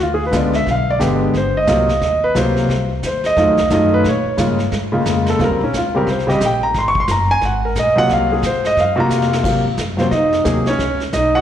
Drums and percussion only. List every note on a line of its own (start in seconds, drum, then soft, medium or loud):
0.33 kick soft
0.33 snare medium
0.33 hi-hat pedal medium
0.53 snare soft
0.67 brush sweep soft
0.67 kick soft
0.67 snare soft
1.00 kick soft
1.00 snare medium
1.00 hi-hat pedal medium
1.34 brush sweep soft
1.34 kick soft
1.34 snare soft
1.67 kick soft
1.67 snare medium
1.67 hi-hat pedal medium
1.89 snare soft
2.02 brush sweep medium
2.02 kick soft
2.02 snare soft
2.35 kick soft
2.35 snare medium
2.35 hi-hat pedal medium
2.56 snare soft
2.69 brush sweep soft
2.69 kick soft
2.69 snare soft
3.03 kick soft
3.03 snare medium
3.03 hi-hat pedal medium
3.24 snare soft
3.37 brush sweep soft
3.37 kick soft
3.37 snare soft
3.57 snare medium
3.70 kick soft
3.70 snare medium
3.70 hi-hat pedal medium
4.04 brush sweep medium
4.04 kick soft
4.04 snare soft
4.38 kick soft
4.38 snare medium
4.38 hi-hat pedal medium
4.59 snare soft
4.72 brush sweep soft
4.72 kick soft
4.72 snare soft
5.06 kick soft
5.06 snare medium
5.06 hi-hat pedal medium
5.26 snare medium
5.40 brush sweep medium
5.40 kick soft
5.40 snare soft
5.73 kick soft
5.73 snare medium
5.73 hi-hat pedal medium
6.07 brush sweep soft
6.07 kick soft
6.07 snare soft
6.19 snare soft
6.29 snare soft
6.41 kick soft
6.41 snare medium
6.41 hi-hat pedal medium
6.74 brush sweep medium
6.74 kick soft
6.74 snare medium
6.95 kick medium
7.08 kick soft
7.08 snare medium
7.08 hi-hat pedal medium
7.41 brush sweep medium
7.41 kick soft
7.41 snare soft
7.75 kick soft
7.75 snare medium
7.75 hi-hat pedal medium
8.09 brush sweep soft
8.09 kick soft
8.09 snare medium
8.43 kick soft
8.43 snare medium
8.43 hi-hat pedal medium
8.64 snare soft
8.77 brush sweep soft
8.77 kick soft
8.77 snare soft
9.10 snare medium
9.10 hi-hat pedal medium
9.22 snare medium
9.33 snare loud
9.44 brush sweep soft
9.44 kick medium
9.44 snare soft
9.44 crash medium
9.77 kick soft
9.77 snare medium
9.77 hi-hat pedal medium
9.98 snare soft
10.11 brush sweep soft
10.11 kick soft
10.11 snare soft
10.33 snare medium
10.45 kick soft
10.45 snare medium
10.45 hi-hat pedal medium
10.66 snare soft
10.79 brush sweep medium
10.79 kick soft
10.79 snare soft
11.00 snare soft
11.13 kick soft
11.13 snare medium
11.13 hi-hat pedal medium